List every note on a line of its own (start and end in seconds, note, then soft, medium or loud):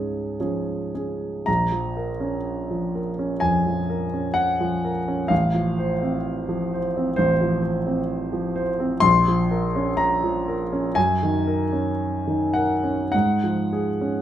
0.00 1.50 G#2 soft
0.00 0.40 F3 soft
0.00 0.40 C#4 soft
0.00 0.41 G#4 soft
0.00 0.39 C#5 medium
0.40 0.91 F3 soft
0.40 0.92 C#4 soft
0.40 0.92 G#4 soft
0.95 1.43 C#4 soft
0.95 1.43 G#4 soft
1.46 3.38 A#1 medium
1.46 3.42 A#5 medium
1.72 2.11 F3 soft
1.97 2.36 A#4 soft
2.20 2.99 C#4 soft
2.71 3.09 F3 soft
2.95 3.33 A#4 soft
3.19 3.57 C#4 soft
3.40 3.80 F2 soft
3.40 4.36 G#5 medium
3.66 4.04 F3 soft
3.90 4.28 A#4 soft
4.14 4.89 C#4 soft
4.34 5.29 F#5 medium
4.60 4.98 F3 soft
4.85 5.22 A#4 soft
5.08 5.31 C#4 soft
5.28 7.14 A1 medium
5.28 7.17 F5 medium
5.54 5.92 F3 soft
5.78 6.16 C5 soft
6.02 6.77 C4 soft
6.49 6.86 F3 soft
6.74 7.09 C5 soft
6.97 7.32 C4 soft
7.16 8.99 A1 medium
7.16 7.60 C5 medium
7.41 7.77 F3 soft
7.62 7.99 C5 soft
7.87 8.61 C4 soft
8.33 8.70 F3 medium
8.56 8.93 C5 medium
8.80 9.03 C4 medium
9.00 10.92 A#1 medium
9.00 9.98 C6 loud
9.28 9.66 F3 soft
9.51 9.90 A#4 medium
9.76 10.53 C#4 medium
9.97 10.96 A#5 medium
10.24 10.62 F3 soft
10.48 10.87 A#4 soft
10.73 10.97 C#4 medium
10.95 13.09 F#2 medium
10.95 12.54 G#5 medium
11.23 11.63 D#3 soft
11.47 11.89 A#4 soft
11.73 12.60 C#4 soft
12.27 12.72 D#3 soft
12.54 13.02 A#4 soft
12.54 13.10 F#5 medium
12.84 13.13 C#4 soft
13.12 14.22 G#2 medium
13.12 14.22 F#5 medium
13.44 13.89 F3 soft
13.72 14.18 G#4 soft
14.01 14.22 C#4 soft